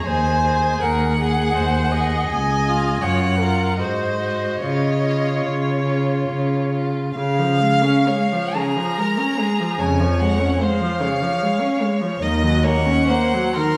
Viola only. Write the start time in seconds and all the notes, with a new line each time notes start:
0.05 C5
0.82 A#4
1.19 G#4
1.55 C5
1.92 D#5
3.02 C#5
3.39 A#4
3.79 C5
4.63 C#5
7.17 C#3
7.39 F3
7.60 G#3
7.83 C#4
8.08 G#3
8.32 F3
8.56 C#3
8.77 F3
8.98 G#3
9.19 C#4
9.39 G#3
9.60 F3
9.80 C#3
10.00 F3
10.20 G#3
10.40 C#4
10.61 G#3
10.80 F3
11.01 C#3
11.22 F3
11.43 G#3
11.61 C#4
11.82 G#3
12.02 F3
12.23 D#3
12.43 F#3
12.65 A#3
12.86 C#4
13.10 A#3
13.33 F#3
13.56 D#3